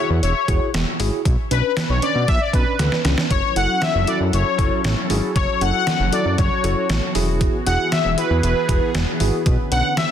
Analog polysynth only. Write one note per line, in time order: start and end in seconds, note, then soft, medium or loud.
0.22 0.70 C#5 medium
1.51 1.91 B4 loud
1.89 2.03 C#5 medium
2.03 2.29 D5 loud
2.28 2.41 E5 loud
2.41 2.54 D5 loud
2.54 3.01 B4 medium
3.31 3.54 C#5 loud
3.56 3.83 F#5 loud
3.82 4.08 E5 loud
4.07 4.19 D5 medium
4.33 5.06 C#5 medium
5.36 5.62 C#5 loud
5.61 6.14 F#5 loud
6.13 6.36 D5 medium
6.38 7.11 C#5 medium
7.66 7.93 F#5 loud
7.92 8.18 E5 loud
8.18 8.42 B4 medium
8.43 8.91 B4 medium
9.72 9.95 F#5 loud
9.97 10.11 E5 loud